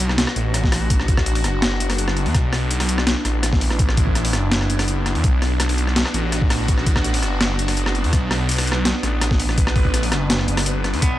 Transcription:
0.00 0.26 B1 loud
0.00 11.19 B3 medium
0.00 11.19 D4 medium
0.00 2.34 F#4 medium
0.09 cross-stick medium
0.18 snare loud
0.18 closed hi-hat medium
0.27 cross-stick medium
0.36 1.46 A1 loud
0.36 closed hi-hat medium
0.54 cross-stick medium
0.54 closed hi-hat medium
0.64 kick loud
0.64 snare soft
0.72 cross-stick medium
0.72 open hi-hat medium
0.90 kick loud
0.90 closed hi-hat medium
1.00 cross-stick medium
1.08 kick loud
1.08 closed hi-hat medium
1.17 kick medium
1.17 cross-stick medium
1.26 closed hi-hat medium
1.35 open hi-hat medium
1.44 1.79 F#1 loud
1.44 cross-stick medium
1.44 closed hi-hat medium
1.62 cross-stick medium
1.62 snare loud
1.62 closed hi-hat medium
1.80 2.28 F#1 loud
1.80 closed hi-hat medium
1.90 cross-stick medium
1.90 open hi-hat medium
1.98 closed hi-hat medium
2.08 cross-stick medium
2.17 closed hi-hat soft
2.26 2.34 E2 loud
2.26 open hi-hat soft
2.35 3.15 B1 loud
2.35 5.23 E4 medium
2.35 kick loud
2.35 cross-stick soft
2.35 closed hi-hat medium
2.53 cross-stick medium
2.53 open hi-hat soft
2.71 closed hi-hat medium
2.80 cross-stick medium
2.80 open hi-hat medium
2.89 closed hi-hat medium
2.98 cross-stick medium
3.07 snare loud
3.07 closed hi-hat medium
3.25 4.35 A1 loud
3.25 cross-stick soft
3.25 closed hi-hat medium
3.43 cross-stick medium
3.43 closed hi-hat medium
3.53 kick loud
3.53 snare soft
3.61 open hi-hat medium
3.70 cross-stick medium
3.79 kick loud
3.79 closed hi-hat medium
3.89 cross-stick medium
3.97 kick loud
3.97 closed hi-hat medium
4.07 kick medium
4.15 cross-stick soft
4.15 closed hi-hat medium
4.25 open hi-hat medium
4.33 4.69 F#1 loud
4.33 cross-stick medium
4.33 closed hi-hat medium
4.52 snare loud
4.52 closed hi-hat medium
4.61 cross-stick medium
4.70 5.17 F#1 loud
4.70 closed hi-hat medium
4.79 cross-stick medium
4.79 open hi-hat medium
4.88 closed hi-hat medium
5.06 cross-stick medium
5.06 closed hi-hat soft
5.15 5.23 E2 loud
5.15 open hi-hat soft
5.24 6.04 B1 loud
5.24 8.12 F#4 medium
5.24 kick loud
5.24 closed hi-hat medium
5.42 cross-stick medium
5.42 open hi-hat soft
5.60 cross-stick medium
5.60 closed hi-hat medium
5.69 open hi-hat medium
5.78 closed hi-hat medium
5.87 cross-stick medium
5.96 snare loud
5.96 closed hi-hat medium
6.06 cross-stick medium
6.14 7.24 A1 loud
6.14 closed hi-hat medium
6.32 cross-stick medium
6.32 closed hi-hat medium
6.42 kick loud
6.50 cross-stick medium
6.50 open hi-hat medium
6.68 kick loud
6.68 closed hi-hat medium
6.78 cross-stick medium
6.86 kick loud
6.86 closed hi-hat medium
6.96 kick medium
6.96 cross-stick medium
7.04 closed hi-hat medium
7.14 open hi-hat medium
7.23 7.58 F#1 loud
7.23 cross-stick soft
7.23 closed hi-hat medium
7.41 cross-stick medium
7.41 snare loud
7.41 closed hi-hat medium
7.59 8.06 F#1 loud
7.59 closed hi-hat medium
7.68 cross-stick soft
7.68 open hi-hat medium
7.77 closed hi-hat medium
7.86 cross-stick medium
7.95 closed hi-hat soft
8.04 8.12 E2 loud
8.04 open hi-hat soft
8.13 8.94 B1 loud
8.13 11.01 B4 medium
8.13 kick loud
8.13 cross-stick medium
8.13 closed hi-hat medium
8.31 cross-stick medium
8.31 open hi-hat soft
8.49 closed hi-hat medium
8.51 closed hi-hat medium
8.54 closed hi-hat medium
8.56 cross-stick medium
8.56 closed hi-hat soft
8.56 open hi-hat medium
8.67 closed hi-hat medium
8.72 cross-stick medium
8.85 snare loud
8.85 closed hi-hat medium
9.03 10.13 A1 loud
9.03 cross-stick medium
9.03 closed hi-hat medium
9.21 cross-stick medium
9.21 closed hi-hat medium
9.31 kick loud
9.31 snare soft
9.40 open hi-hat medium
9.49 cross-stick medium
9.58 kick loud
9.58 closed hi-hat medium
9.67 cross-stick medium
9.76 kick loud
9.76 open hi-hat soft
9.85 kick medium
9.94 cross-stick medium
9.94 closed hi-hat medium
10.03 open hi-hat medium
10.12 10.47 F#1 loud
10.12 cross-stick medium
10.12 closed hi-hat medium
10.30 snare loud
10.30 closed hi-hat medium
10.39 cross-stick medium
10.48 10.95 F#1 loud
10.48 closed hi-hat medium
10.57 cross-stick medium
10.57 open hi-hat medium
10.66 closed hi-hat medium
10.84 cross-stick medium
10.84 closed hi-hat soft
10.93 11.02 E2 loud
10.93 open hi-hat soft
11.02 11.19 B1 loud
11.02 11.19 B3 loud
11.02 11.19 F#4 medium
11.02 kick loud
11.02 closed hi-hat medium

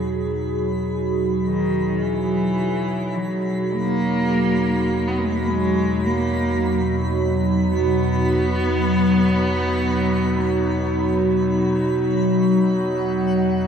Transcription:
0.00 3.08 E2 medium
0.00 13.67 B2 medium
0.00 0.29 F#3 medium
0.00 13.67 F#3 medium
0.00 13.67 D#4 medium
0.00 13.67 F#4 medium
0.00 5.23 G#4 medium
0.00 12.39 B5 medium
1.45 2.04 D#3 medium
2.02 3.19 E3 medium
3.14 12.29 E2 medium
3.14 3.76 F#3 medium
3.64 13.67 B2 medium
3.75 5.09 A#3 loud
5.08 5.20 B3 medium
5.18 5.26 A#3 medium
5.24 5.35 G#3 medium
5.33 5.49 A#3 medium
5.47 6.02 G#3 medium
6.05 7.13 A#3 medium
7.74 11.74 B3 loud
12.36 13.67 E2 medium
12.36 13.67 F#5 medium

